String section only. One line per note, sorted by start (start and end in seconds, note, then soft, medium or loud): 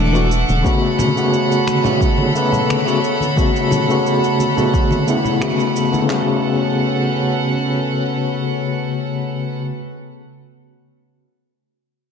0.00 0.61 A4 medium
0.00 0.60 E5 medium
0.00 6.06 F#5 medium
0.00 0.61 D6 medium
0.65 6.06 A4 medium
0.65 6.06 C#5 medium
0.65 6.06 B5 medium
6.10 9.59 C#4 medium
6.10 9.59 A4 medium
6.10 9.59 B4 medium
6.10 9.59 F#5 medium